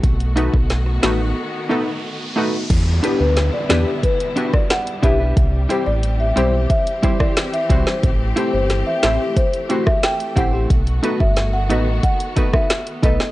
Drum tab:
CC |----------------|x---------------|----------------|----------------|
HH |xxx-x-x---------|x-x-x-x-xxx-xxx-|x-x-x-x-xxx-xxx-|x-x-x-x-xxx-xxx-|
SD |----o-o---------|----o-o----ro---|-----------ro--o|----o-o----ro---|
BD |o--o------------|o-------o--o--o-|o-------o-oo--o-|o-------o--o--o-|

CC |----------------|
HH |xxx-x-x-xxx-xxx-|
SD |----o------ro--o|
BD |o--o----o-oo--o-|